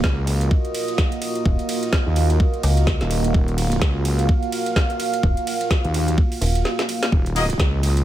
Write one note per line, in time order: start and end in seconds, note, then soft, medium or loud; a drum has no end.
0.00 0.49 C#2 loud
0.00 8.04 A#3 medium
0.00 8.04 F4 medium
0.00 8.04 F#4 medium
0.00 3.33 D#5 medium
0.00 kick loud
0.00 snare loud
0.27 open hi-hat loud
0.27 ride medium
0.41 closed hi-hat medium
0.51 kick loud
0.65 closed hi-hat soft
0.75 open hi-hat loud
0.75 ride medium
0.88 closed hi-hat medium
0.98 kick loud
0.98 snare loud
1.12 closed hi-hat medium
1.22 open hi-hat loud
1.22 ride medium
1.35 closed hi-hat medium
1.46 1.57 D#1 medium
1.46 kick loud
1.59 closed hi-hat medium
1.69 open hi-hat loud
1.69 ride medium
1.83 closed hi-hat medium
1.93 kick loud
1.93 snare loud
2.06 2.38 D#2 loud
2.16 open hi-hat loud
2.16 ride medium
2.30 closed hi-hat medium
2.40 kick loud
2.54 closed hi-hat soft
2.63 2.99 C#2 loud
2.63 open hi-hat loud
2.63 ride medium
2.77 closed hi-hat medium
2.87 kick loud
2.87 snare loud
3.01 3.33 D#1 loud
3.01 snare soft
3.01 closed hi-hat medium
3.11 open hi-hat loud
3.11 ride medium
3.24 closed hi-hat medium
3.34 3.80 D#1 loud
3.34 7.11 F5 medium
3.34 kick loud
3.48 closed hi-hat medium
3.58 open hi-hat loud
3.58 ride medium
3.72 closed hi-hat medium
3.82 4.27 C#2 loud
3.82 kick loud
3.82 snare loud
4.05 open hi-hat loud
4.05 ride medium
4.19 closed hi-hat medium
4.29 kick loud
4.43 closed hi-hat soft
4.52 open hi-hat loud
4.52 ride medium
4.66 closed hi-hat medium
4.76 kick loud
4.76 snare loud
4.90 closed hi-hat medium
5.00 open hi-hat loud
5.00 ride medium
5.13 closed hi-hat medium
5.23 5.35 D#1 medium
5.23 kick loud
5.37 closed hi-hat medium
5.47 open hi-hat loud
5.47 ride medium
5.61 closed hi-hat medium
5.71 kick loud
5.71 snare loud
5.84 6.16 D#2 loud
5.84 closed hi-hat soft
5.94 open hi-hat loud
5.94 ride medium
6.08 closed hi-hat medium
6.18 kick loud
6.32 open hi-hat medium
6.41 6.63 D#1 loud
6.41 open hi-hat loud
6.41 ride medium
6.55 closed hi-hat medium
6.65 snare medium
6.79 snare medium
6.79 closed hi-hat medium
6.89 open hi-hat loud
6.89 ride medium
7.03 snare medium
7.03 closed hi-hat medium
7.12 7.58 D#1 medium
7.12 8.04 D#5 medium
7.12 kick loud
7.26 closed hi-hat medium
7.36 7.44 A#3 loud
7.36 7.44 F4 medium
7.36 7.44 F#4 medium
7.36 7.44 D#5 loud
7.36 open hi-hat loud
7.36 ride medium
7.50 closed hi-hat medium
7.60 8.04 C#2 loud
7.60 kick loud
7.60 snare loud
7.83 open hi-hat loud
7.83 ride medium
7.97 closed hi-hat medium